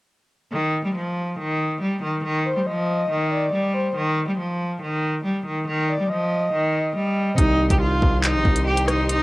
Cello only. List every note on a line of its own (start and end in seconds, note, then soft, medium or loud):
0.52 0.82 D#3 loud
0.84 0.94 G3 medium
0.95 1.35 F3 medium
1.38 1.78 D#3 medium
1.81 2.00 G3 medium
2.02 2.22 D#3 medium
2.24 2.54 D#3 loud
2.56 2.65 G3 medium
2.66 3.07 F3 medium
3.10 3.50 D#3 medium
3.52 3.92 G3 medium
3.95 4.25 D#3 loud
4.27 4.37 G3 medium
4.38 4.78 F3 medium
4.81 5.21 D#3 medium
5.24 5.43 G3 medium
5.45 5.65 D#3 medium
5.67 5.97 D#3 loud
5.99 6.08 G3 medium
6.09 6.50 F3 medium
6.52 6.93 D#3 medium
6.95 7.36 G3 medium
7.38 7.68 D#4 loud
7.70 7.80 G4 medium
7.81 8.21 F4 medium
8.24 8.64 D#4 loud
8.67 8.86 G4 medium
8.88 9.07 D#4 medium
9.09 9.23 D#4 loud